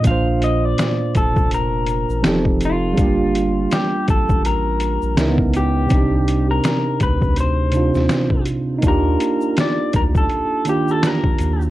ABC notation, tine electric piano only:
X:1
M:4/4
L:1/8
Q:"Swing 16ths" 1/4=82
K:Eblyd
V:1 name="Tine electric piano"
[B,,B,DFc]6 [F,CEGA]2 | [G,B,DFG]6 [_D,_C_DE_FB]2 | [C,CDEG]4- [C,CDEG] [C,CDEF]3 | [B,DEFG]4- [B,DEFG] [E,B,DFG]3 |]